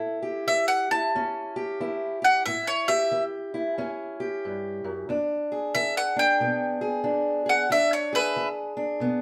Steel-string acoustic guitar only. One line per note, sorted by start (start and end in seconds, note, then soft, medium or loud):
0.00 0.42 A2 medium
0.00 0.91 E4 medium
0.00 0.22 A4 medium
0.23 1.54 G4 medium
0.47 1.08 E3 medium
0.91 1.80 E4 medium
1.15 1.75 E2 medium
1.15 2.43 C#4 medium
1.56 2.21 G4 medium
1.80 2.40 E3 medium
1.80 2.47 E4 medium
2.22 2.43 G4 medium
2.46 3.06 A2 medium
2.46 3.54 E4 medium
2.88 4.18 G4 medium
3.12 3.72 E3 medium
3.54 5.09 E4 medium
3.78 4.38 E2 medium
3.78 5.05 C#4 medium
4.20 5.06 G4 medium
4.45 4.84 G2 medium
4.84 5.08 F#2 medium
5.09 5.69 E2 medium
5.09 6.16 D4 medium
5.52 6.80 G#4 medium
5.75 6.34 E3 medium
6.16 7.03 D4 medium
6.40 6.99 B2 medium
6.40 7.67 B3 medium
6.81 7.45 G#4 medium
7.04 7.64 E3 medium
7.04 7.70 D4 medium
7.46 7.66 G#4 medium
7.70 8.29 E2 medium
7.70 8.76 D4 medium
8.13 9.22 G#4 medium
8.36 8.95 E3 medium
8.77 9.22 D4 medium
9.00 9.22 B2 medium
9.00 9.22 B3 medium